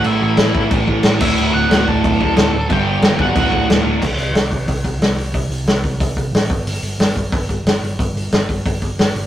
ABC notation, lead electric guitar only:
X:1
M:4/4
L:1/8
Q:1/4=181
K:D
V:1 name="Lead electric guitar"
[Ee] [Ee]3 z3 [Ee]- | [Ee] [Ff]2 [Aa]4- [Aa] | [Gg]3 [Ff]3 z2 | z8 |
z8 | z8 | z8 |]